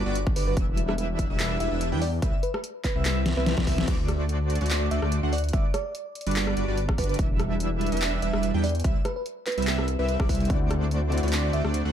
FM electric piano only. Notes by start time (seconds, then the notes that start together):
0.36 B4
0.47 B4
1.60 E5
2.02 D5
2.43 B4
2.54 B4
2.84 B4
3.37 B4
3.46 B4
4.91 E5
5.33 D5
5.53 E5
5.74 D5
6.98 B4
7.09 B4
8.22 E5
8.64 D5
9.05 B4
9.16 B4
9.47 B4
9.99 B4
10.09 B4
11.53 E5